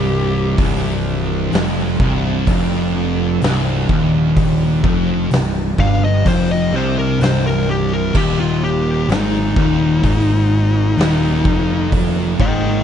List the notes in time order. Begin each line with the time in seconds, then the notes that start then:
Already playing: C1 C2 C3 G3 D4 G4
0.57 C1 C2 F3, kick, open hi-hat
1.52 F1 F2, snare, open hi-hat
2.00 C1 C2, kick
2.47 F1 F2, kick, open hi-hat
3.42 C1 C2, snare, open hi-hat
3.89 D#1 D#2, kick
4.37 kick, open hi-hat
4.83 F1 F2, kick
5.31 C1 C2, snare, open hi-hat
5.78 G1 G2 F5, kick
6.04 D#5
6.26 F1 F2 C5, kick, open hi-hat
6.51 D#5
6.73 C2 C3 C5
6.99 A#4
7.20 C1 C2 C5, open hi-hat
7.24 snare
7.47 A#4
7.70 G4
7.93 A#4
8.13 D#1 D#2 D#3 A#3 F4 G4, kick, crash
8.40 F4
8.64 G4
9.09 G#1 G#2 D#4, snare, open hi-hat
9.56 D#1 D#2, kick
10.03 G#1 G#2, kick, open hi-hat
10.97 D#1 D#2, snare, open hi-hat
11.45 F1 F2, kick
11.92 kick, open hi-hat
12.39 G#1 G#2 D#5 G5, kick